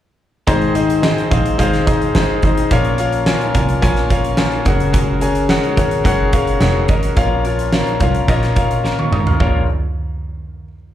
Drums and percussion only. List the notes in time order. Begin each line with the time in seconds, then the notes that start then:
0.47 kick, closed hi-hat
0.62 closed hi-hat
0.75 closed hi-hat
0.90 closed hi-hat
1.03 snare
1.18 closed hi-hat
1.31 kick, closed hi-hat
1.46 closed hi-hat
1.59 kick, closed hi-hat
1.73 snare, closed hi-hat
1.87 kick, closed hi-hat
2.02 closed hi-hat
2.15 snare
2.42 kick, closed hi-hat
2.57 closed hi-hat
2.71 kick, closed hi-hat
2.84 closed hi-hat
2.98 closed hi-hat
3.12 closed hi-hat
3.26 snare
3.41 closed hi-hat
3.55 kick, closed hi-hat
3.69 closed hi-hat
3.82 kick, closed hi-hat
3.96 snare, closed hi-hat
4.10 kick, closed hi-hat
4.24 closed hi-hat
4.37 snare
4.52 closed hi-hat
4.65 kick, closed hi-hat
4.80 closed hi-hat
4.94 kick, closed hi-hat
5.21 closed hi-hat
5.35 closed hi-hat
5.49 snare
5.63 closed hi-hat
5.77 kick, closed hi-hat
5.91 closed hi-hat
6.05 kick, closed hi-hat
6.33 kick, closed hi-hat
6.47 closed hi-hat
6.61 snare
6.88 kick, closed hi-hat
7.03 closed hi-hat
7.16 kick, closed hi-hat
7.45 closed hi-hat
7.59 closed hi-hat
7.73 snare
7.87 closed hi-hat
8.00 kick, closed hi-hat
8.14 closed hi-hat
8.28 kick, closed hi-hat
8.43 snare, closed hi-hat
8.56 kick, closed hi-hat
8.71 closed hi-hat
8.85 snare
8.99 high tom
9.13 mid tom
9.27 floor tom
9.40 kick